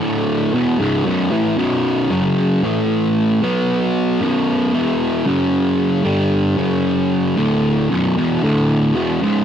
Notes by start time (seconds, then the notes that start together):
0.00 D2 A2 D3
0.53 E2 B2
0.79 C#2 G#2
1.05 B1 F#2
1.32 A2 E3
1.57 B1 F#2 B2
2.10 F#2 C#3 F#3
2.63 A2 E3 A3
3.42 B2 F#3 B3
4.20 B1 F#2 B2
4.73 E2 B2 E3
5.26 F#2 C#3 F#3
6.04 G2 D3 G3
6.57 F#2 C#3 F#3
7.37 D2 A2 D3
7.90 B1 F#2
8.17 E2 B2
8.43 D2 A2 D3
8.95 E2 B2
9.22 C#2 G#2